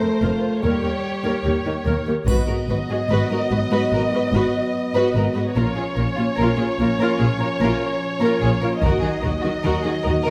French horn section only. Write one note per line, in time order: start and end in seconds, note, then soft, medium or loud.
0.00 0.60 A3 medium
0.62 1.45 G3 soft
2.27 5.51 F#3 soft
2.27 5.52 B3 soft
5.57 8.80 F3 soft
5.57 8.80 C#4 soft
8.84 10.30 F#3 soft
8.84 10.30 D#4 soft